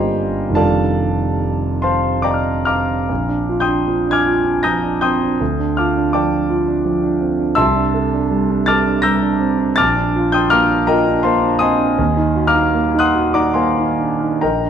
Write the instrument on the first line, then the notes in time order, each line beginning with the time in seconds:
grand piano
Already playing: G1 D3 G3 A#3 F4 G4 A#4 C5 D5 D#5 F5 G5 G#5 A#5 C6 D6
0.50 F1 D#3 G3
0.54 D4 F4 A4 D5 F5 A5
1.82 C5 F5 A5 C6
2.22 D5 D#5 G5 A#5 D6
2.28 G5 D6
2.34 F6
2.65 F5 A#5 D6 F6
3.09 A#1
3.29 D4
3.49 F4
3.60 G5 C6 D#6 G6
3.68 D4
3.88 F3
4.07 D4 G#6
4.12 G#5 D6 F6
4.26 F4
4.46 D4
4.63 F3 A#5 D#6 G6 A#6
4.83 D4
5.01 C4 G5 C6 D#6 G6
5.22 D4
5.41 D2
5.60 D4
5.77 F4 F5 A5 D6 F6
5.97 D4
6.13 F3 D5 G5 A5 D6
6.33 D4
6.50 F4
6.68 D4
6.85 F3
7.03 D4
7.20 C4
7.39 D4
7.55 C2 E5 A5 C6 E6
7.76 D4
7.94 A4
8.14 D4
8.30 G3
8.50 D4
8.66 A4 A5 D6 F6 A6
8.86 D4
9.02 G3 A#5 E6 G6 A#6
9.22 D4
9.40 C4
9.58 D4
9.76 A#1 A5 D6 F6 A6
9.97 D4
10.16 F4
10.32 D4 G5 C6 D#6 G6
10.50 A#3 F5 A#5 D6 F6
10.70 D4
10.87 F4 A#4 D#5 G5 A#5
11.08 D4
11.23 A#3 C5 F5 A5 C6
11.42 D4
11.59 C4 D#5 G#5 C6 D#6
11.79 D4
11.98 D#2
12.17 D#4
12.35 F#4
12.47 F5 A#5 D6 F6
12.55 D#4
12.74 A#3
12.94 D#4
12.99 F#5 C6 D#6 F#6
13.14 F#4
13.34 D#4 D5 F#5 A#5 D6
13.54 A#3 C5 F5 G#5 C6
13.78 D#4
13.99 D4
14.20 D#4
14.41 A#1 A#4 D#5 G5 A#5
14.65 D4